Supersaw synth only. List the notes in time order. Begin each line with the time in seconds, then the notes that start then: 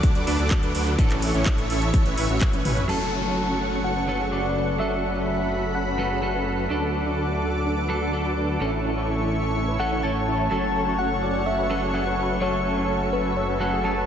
0.03 D4 F#4 A4
0.15 D4 F#4 B4
0.27 D4 F#4 B4
0.39 D4 F#4 A4
0.63 D4 F#4 B4
0.75 D4 F#4 B4
0.99 C#4 E4 A4
1.34 C#4 E4 C#5
1.46 C#4 E4 A4
1.70 C#4 E4 A4
1.94 C#4 E4 A4
2.06 C#4 E4 B4
2.18 C#4 E4 B4
2.30 C#4 E4 F#4
2.53 C#4 E4 B4
2.65 C#4 E4 B4
2.89 C#4 F#4 A4
3.25 C#4 F#4 C#5
3.37 C#4 F#4 A4
3.61 C#4 F#4 A4
3.84 C#4 F#4 A4
3.96 C#4 F#4 B4
4.08 C#4 F#4 B4
4.20 C#4 F#4 G#4
4.44 C#4 F#4 B4
4.56 C#4 F#4 B4
4.80 C#4 F#4 A4
5.15 C#4 F#4 C#5
5.27 C#4 F#4 A4
5.51 C#4 F#4 A4
5.75 C#4 F#4 A4
5.87 C#4 F#4 B4
5.99 C#4 F#4 B4
6.10 C#4 F#4 G#4
6.34 C#4 F#4 B4
6.46 C#4 F#4 B4
6.70 D4 F#4 A4
7.06 D4 F#4 D5
7.18 D4 F#4 A4
7.41 D4 F#4 A4
7.65 D4 F#4 A4
7.77 D4 F#4 B4
7.89 D4 F#4 B4
8.01 D4 F#4 A4
8.25 D4 F#4 B4
8.37 D4 F#4 B4
8.60 C#4 E4 A4
8.96 C#4 E4 C#5
9.08 C#4 E4 A4
9.32 C#4 E4 A4
9.56 C#4 E4 A4
9.68 C#4 E4 B4
9.91 C#4 E4 C#5
10.03 C#4 E4 C#5
10.27 C#4 E4 C#5
10.51 C#4 F#4 A4
10.87 C#4 F#4 C#5
10.99 C#4 F#4 A4
11.22 C#4 F#4 A4
11.46 C#4 F#4 A4
11.58 C#4 F#4 B4
11.70 C#4 F#4 B4
11.82 C#4 F#4 G#4
12.06 C#4 F#4 B4
12.18 C#4 F#4 B4
12.41 C#4 F#4 A4
12.77 C#4 F#4 C#5
12.89 C#4 F#4 A4
13.13 C#4 F#4 A4
13.37 C#4 F#4 A4
13.49 C#4 F#4 B4
13.60 C#4 F#4 B4
13.72 C#4 F#4 G#4
13.96 C#4 F#4 B4